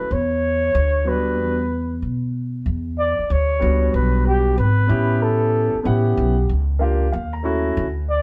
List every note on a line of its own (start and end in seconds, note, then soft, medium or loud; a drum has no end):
0.00 0.14 B4 medium
0.11 0.71 E2 medium
0.11 1.10 C#5 loud
0.75 1.39 D2 loud
1.04 1.13 F#3 medium
1.04 1.54 B3 medium
1.04 1.55 D4 medium
1.04 1.55 F#4 medium
1.08 1.57 G3 medium
1.08 2.03 B4 medium
1.39 1.99 E2 medium
2.02 2.63 B2 medium
2.66 3.16 E2 medium
2.99 3.33 D5 medium
3.19 muted upright bass stroke soft
3.30 3.60 D2 medium
3.30 3.94 C#5 loud
3.60 3.92 C#2 medium
3.60 4.52 G3 medium
3.60 4.52 B3 medium
3.60 4.53 D4 medium
3.60 4.53 F#4 medium
3.94 4.54 B1 medium
3.94 4.23 B4 medium
4.27 4.56 G4 medium
4.58 4.88 G#1 medium
4.58 5.24 B4 medium
4.87 5.70 A1 medium
4.87 5.73 B3 medium
4.87 5.74 C#4 medium
4.87 5.74 E4 medium
4.87 5.75 G4 medium
5.22 5.81 A4 medium
5.74 muted upright bass stroke soft
5.82 6.15 A1 medium
5.82 6.33 B3 medium
5.82 6.33 C#4 medium
5.82 6.34 E4 medium
5.82 5.89 A4 medium
5.86 6.50 G4 medium
5.86 6.34 F#5 medium
6.17 6.47 B1 medium
6.49 7.10 C#2 medium
6.79 7.05 A#3 medium
6.79 7.06 D4 medium
6.79 7.06 F4 medium
6.79 7.06 G4 medium
7.12 7.73 D#2 medium
7.12 7.32 F5 medium
7.33 7.73 A#5 medium
7.43 7.84 A3 medium
7.43 7.84 C#4 medium
7.43 7.85 E4 medium
7.43 7.85 F#4 medium
7.77 8.22 D2 loud
8.09 8.22 D5 loud